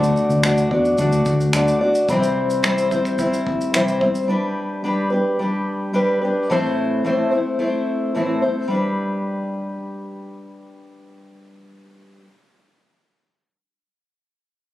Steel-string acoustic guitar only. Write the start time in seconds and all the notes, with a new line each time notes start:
Already playing: D3 A3 D4 F#4 D5
0.43 D3 A3 D4 F#4 D5
0.71 D4 F#4 D5
0.98 A3 D4 F#4 D5
1.54 D3 A3 D4 F#4 D5
1.81 D4 F#4 D5
2.09 C3 E3 G3 C4 E4 C5
2.63 C3 E3 G3 C4 E4 C5
2.91 G3 C4 E4 C5
3.18 G3 C4 E4 C5
3.74 C3 E3 G3 C4 E4 C5
4.01 G3 C4 E4 C5
4.28 G3 D4 G4 B4
4.84 G3 D4 G4 B4
5.10 D4 G4 B4
5.39 G3 D4 G4 B4
5.93 G3 D4 G4 B4
6.22 D4 G4 B4
6.50 A2 E3 A3 C4 E4 C5
7.04 A2 E3 A3 C4 E4 C5
7.31 A3 C4 E4 C5
7.59 A3 C4 E4 C5
8.15 A2 E3 A3 C4 E4 C5
8.42 A3 C4 E4 C5
8.68 G3 D4
8.73 G4 B4